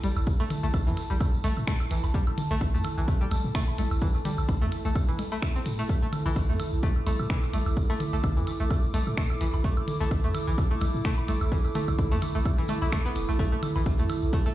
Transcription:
Already playing: E4 A4 A5
0.03 A1 G3, closed hi-hat, tambourine, low conga
0.16 A1, tambourine, high woodblock
0.27 kick, tambourine
0.40 A3, tambourine, high woodblock
0.50 closed hi-hat, high tom, tambourine, high woodblock
0.63 A1 A3, tambourine
0.74 A1, kick, high tom, tambourine, high woodblock
0.87 A2 E3, tambourine
0.97 closed hi-hat, tambourine, high woodblock
1.10 A1 G3, tambourine
1.21 kick, tambourine, high woodblock
1.34 tambourine
1.44 A1 A3, closed hi-hat, tambourine, low conga
1.56 A2, tambourine, high woodblock
1.67 A3, finger snap, kick, tambourine
1.80 tambourine, high woodblock
1.90 A1 E3, closed hi-hat, tambourine
2.04 A1, tambourine, high woodblock
2.14 G3, kick, tambourine
2.27 high woodblock
2.38 closed hi-hat, high tom, tambourine
2.50 A1 A3, tambourine
2.61 A1, kick, high tom, tambourine, high woodblock
2.74 A2 A3, tambourine
2.84 closed hi-hat, high tom, tambourine, high woodblock
2.97 A1 E3, tambourine
3.08 kick, tambourine, high woodblock
3.21 G3
3.31 A1, closed hi-hat, tambourine, low conga, high woodblock
3.44 A2, tambourine
3.55 A3, finger snap, kick, tambourine
3.67 tambourine, high woodblock
3.78 A1 A3, closed hi-hat, tambourine, low conga
3.91 A1, tambourine, high woodblock
4.01 E3, kick, tambourine
4.15 tambourine, high woodblock
4.25 G3, closed hi-hat, high tom, tambourine
4.38 A1, tambourine, high woodblock
4.49 A1, kick, high tom, tambourine, high woodblock
4.61 A2 A3, tambourine
4.72 closed hi-hat, tambourine, high woodblock
4.85 A1 A3, tambourine
4.96 kick, tambourine, high woodblock
5.08 E3, tambourine
5.19 closed hi-hat, tambourine, low conga, high woodblock
5.32 A3, tambourine, high woodblock
5.42 finger snap, kick, tambourine, high woodblock
5.55 C4, tambourine
5.66 A2, closed hi-hat, tambourine
5.79 A3, tambourine, high woodblock
5.89 kick, tambourine, high woodblock
6.02 A3
6.13 closed hi-hat, high tom, tambourine, high woodblock
6.26 A1 E3, tambourine, high woodblock
6.36 A1, kick, high tom, tambourine, high woodblock
6.41 D6
6.49 A2 A3, tambourine
6.60 closed hi-hat, high tom, tambourine, high woodblock
6.73 A1, tambourine
6.83 A3, kick, tambourine
6.96 high woodblock
7.07 A1 A3, closed hi-hat, tambourine, low conga, high woodblock
7.19 A2, tambourine, high woodblock
7.30 E3, finger snap, kick, tambourine
7.42 tambourine, high woodblock
7.53 A1 A3, closed hi-hat, tambourine, low conga
7.66 A1, tambourine, high woodblock
7.77 kick, tambourine
7.90 A3, tambourine, high woodblock
8.00 closed hi-hat, high tom, tambourine, high woodblock
8.13 A1 A3, tambourine
8.24 A1, kick, high tom, tambourine, high woodblock
8.37 A2 E3, tambourine
8.47 closed hi-hat, tambourine, high woodblock
8.60 A1 A3, tambourine
8.71 kick, tambourine, high woodblock
8.83 tambourine
8.94 A1 A3, closed hi-hat, tambourine, low conga
9.07 A2, tambourine, high woodblock
9.17 A3, finger snap, kick, tambourine
9.30 tambourine, high woodblock
9.41 A1 E3, closed hi-hat, tambourine
9.54 A1, tambourine, high woodblock
9.64 A3, kick, tambourine
9.77 high woodblock
9.88 closed hi-hat, high tom, tambourine
10.01 A1 A3, tambourine
10.11 A1, kick, high tom, tambourine, high woodblock
10.23 A2 A3, tambourine
10.35 closed hi-hat, high tom, tambourine, high woodblock
10.47 A1 E3, tambourine
10.58 kick, tambourine, high woodblock
10.71 A3
10.81 A1, closed hi-hat, tambourine, low conga, high woodblock
10.94 A2, tambourine
11.05 A3, finger snap, kick, tambourine
11.18 tambourine, high woodblock
11.28 A1 A3, closed hi-hat, tambourine, low conga
11.41 A1, tambourine, high woodblock
11.52 E3, kick, tambourine
11.65 tambourine, high woodblock
11.75 A3, closed hi-hat, high tom, tambourine
11.88 A1, kick, tambourine, high woodblock
11.99 A1, kick, high tom, tambourine, high woodblock
12.12 A2 A3, tambourine
12.22 closed hi-hat, high tom, tambourine, high woodblock
12.35 A1 A3
12.45 kick, tambourine, high woodblock
12.58 E3, tambourine
12.68 A3, closed hi-hat, high tom, tambourine, low conga, high woodblock
12.82 A1 E4, tambourine, high woodblock
12.92 A3, finger snap, kick, tambourine, high woodblock
13.05 B3, tambourine
13.15 E1, closed hi-hat, tambourine
13.29 A1 A3, tambourine, high woodblock
13.39 A3, kick, tambourine, high woodblock
13.52 A3
13.63 closed hi-hat, high tom, tambourine, high woodblock
13.76 A1 E3, tambourine, high woodblock
13.85 A1, kick, high tom, tambourine, high woodblock
13.91 A5
13.98 A2 A3, tambourine
14.09 closed hi-hat, high tom, tambourine, high woodblock
14.22 A1, tambourine
14.33 A3, kick, tambourine
14.46 A3, high woodblock

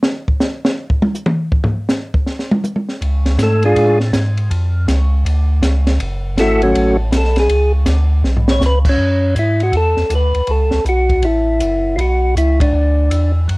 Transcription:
0.03 snare
0.28 kick
0.40 snare, hi-hat pedal
0.65 snare
0.90 kick
1.02 high tom
1.15 hi-hat pedal
1.26 mid tom
1.52 kick
1.64 floor tom
1.89 snare, hi-hat pedal
2.14 kick
2.26 snare
2.39 snare
2.51 high tom
2.64 hi-hat pedal, high tom
2.76 high tom
2.89 snare
3.01 C#2, kick, ride
3.26 snare, ride
3.38 G#2, kick, snare, hi-hat pedal, ride
3.43 A3 A4
3.63 G#3 D4 F4 G#4, ride
3.76 A2, kick, ride
4.00 snare
4.13 G#2, kick, snare, hi-hat pedal, ride
4.37 ride
4.50 F2, kick, ride
4.87 C#2, kick, snare, hi-hat pedal, ride
5.25 D2, kick, ride
5.62 C#2, kick, snare, hi-hat pedal, ride
5.87 snare, ride
5.99 F#1, kick, ride
6.37 G#1 E4 F#4 A4, kick, snare, hi-hat pedal, ride
6.41 A3
6.62 F#3 A3 C#4 F#4, ride
6.74 A1, kick, ride
7.11 B1, kick, snare, hi-hat pedal, ride
7.17 A4
7.24 snare
7.36 G#4, snare, ride
7.48 C#2, kick, ride
7.86 D2, kick, snare, hi-hat pedal, ride
8.23 B1, snare
8.37 floor tom
8.48 C#5, snare
8.60 C#2, snare, hi-hat pedal
8.66 B4
8.85 kick, crash
8.89 C#4
8.98 F#2, kick
9.35 G#2 E4, kick, hi-hat pedal, ride
9.60 F#4, ride
9.72 E2, kick, ride
9.77 A4
9.97 E2, snare
10.10 D2, kick, hi-hat pedal, ride
10.15 B4
10.34 D2, ride
10.47 C#2 A4, kick, ride
10.71 C#2, snare
10.85 B1, kick, hi-hat pedal, ride
10.89 F#4
11.09 kick, ride
11.22 A1 E4, kick, ride
11.60 F#1, kick, hi-hat pedal, ride
11.96 B1 F4, kick, ride
12.01 F#4
12.36 C#2 E4, kick, hi-hat pedal, ride
12.60 D4, kick, ride
12.73 D2
13.10 E2, kick, hi-hat pedal, ride
13.48 F#2, kick, ride

